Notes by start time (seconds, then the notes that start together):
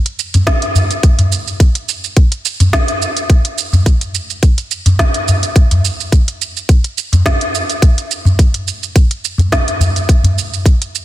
0.06 closed hi-hat, shaker
0.19 shaker
0.34 closed hi-hat, udu, shaker
0.47 kick, snare, closed hi-hat, shaker
0.62 closed hi-hat, shaker
0.75 udu, shaker
0.91 closed hi-hat, shaker
1.03 kick, closed hi-hat, shaker
1.19 closed hi-hat, udu, shaker
1.32 shaker
1.47 shaker
1.60 kick, closed hi-hat, shaker
1.75 closed hi-hat, shaker
1.89 shaker
2.04 shaker
2.17 kick, closed hi-hat, shaker
2.32 closed hi-hat, shaker
2.45 shaker
2.60 closed hi-hat, udu, shaker
2.73 kick, snare, closed hi-hat, shaker
2.88 closed hi-hat, shaker
3.02 shaker
3.17 closed hi-hat, shaker
3.30 kick, closed hi-hat, shaker
3.45 closed hi-hat, shaker
3.58 shaker
3.73 udu, shaker
3.86 kick, closed hi-hat, shaker
4.01 closed hi-hat, shaker
4.15 shaker
4.30 shaker
4.43 kick, closed hi-hat, shaker
4.58 closed hi-hat, shaker
4.71 shaker
4.86 closed hi-hat, udu, shaker
4.99 kick, snare, closed hi-hat, shaker
5.14 closed hi-hat, shaker
5.28 udu, shaker
5.43 closed hi-hat, shaker
5.56 kick, closed hi-hat, shaker
5.71 closed hi-hat, udu, shaker
5.85 shaker
6.00 shaker
6.12 kick, closed hi-hat, shaker
6.28 closed hi-hat, shaker
6.42 shaker
6.57 shaker
6.69 kick, closed hi-hat, shaker
6.84 closed hi-hat, shaker
6.98 shaker
7.13 closed hi-hat, udu, shaker
7.26 kick, snare, closed hi-hat, shaker
7.41 closed hi-hat, shaker
7.55 shaker
7.70 closed hi-hat, shaker
7.82 kick, closed hi-hat, shaker
7.98 closed hi-hat, shaker
8.11 shaker
8.25 udu, shaker
8.39 kick, closed hi-hat, shaker
8.54 closed hi-hat, shaker
8.68 shaker
8.83 shaker
8.96 kick, closed hi-hat, shaker
9.11 closed hi-hat, shaker
9.25 shaker
9.38 closed hi-hat, udu, shaker
9.52 kick, snare, closed hi-hat, shaker
9.68 closed hi-hat, shaker
9.80 udu, shaker
9.96 closed hi-hat, shaker
10.09 kick, closed hi-hat, shaker
10.23 closed hi-hat, udu, shaker
10.38 shaker
10.54 shaker
10.66 kick, closed hi-hat, shaker
10.82 closed hi-hat, shaker
10.95 shaker